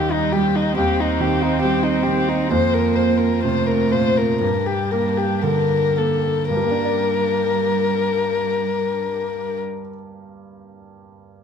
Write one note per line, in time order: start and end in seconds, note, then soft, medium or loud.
0.00 0.74 D#2 medium
0.00 0.62 D#3 soft
0.00 0.18 G3 soft
0.00 0.73 G3 medium
0.00 2.51 D#4 soft
0.00 0.13 G4 soft
0.00 2.51 G4 soft
0.00 4.42 C5 soft
0.12 0.34 D#4 soft
0.33 1.04 G3 soft
0.33 0.57 G4 soft
0.56 0.77 D#4 soft
0.77 2.47 D#2 medium
0.77 2.52 C4 medium
0.77 1.02 G4 soft
1.00 1.22 D#4 soft
1.20 1.89 D#3 soft
1.20 1.44 G4 soft
1.43 1.61 D#4 soft
1.61 2.34 G3 soft
1.61 1.84 G4 soft
1.83 2.05 D#4 soft
2.03 2.51 D#3 soft
2.03 2.30 G4 soft
2.29 2.51 D#4 soft
2.50 4.38 F2 soft
2.50 3.44 A#3 medium
2.50 4.42 C4 soft
2.50 4.42 F4 soft
2.50 2.75 C5 soft
2.74 2.97 A#4 soft
2.96 3.73 A#3 soft
2.96 3.19 C5 soft
3.18 3.43 A#4 soft
3.43 4.22 C3 soft
3.43 4.43 A3 medium
3.43 3.68 C5 soft
3.67 3.93 A#4 soft
3.91 4.42 A#2 soft
3.91 4.19 C5 soft
4.17 4.40 A#4 soft
4.41 6.47 G2 soft
4.41 5.98 G3 soft
4.41 6.51 A#3 soft
4.41 6.49 D4 soft
4.41 6.48 G4 soft
4.41 4.68 A#4 soft
4.66 4.93 G4 soft
4.91 5.76 A#3 soft
4.91 5.19 A#4 soft
5.17 5.44 G4 soft
5.43 6.30 D3 soft
5.43 5.99 A#4 soft
5.97 6.51 A#3 soft
5.97 6.50 A4 soft
6.49 9.59 G2 soft
6.49 9.60 G3 medium
6.49 9.59 D4 soft
6.49 9.58 G4 soft
6.49 9.59 A#4 soft
6.49 9.60 A#4 soft
6.56 9.66 G3 soft
6.64 9.73 A#3 soft
6.71 9.80 D4 soft
6.78 9.87 A#4 soft
6.85 9.94 D5 soft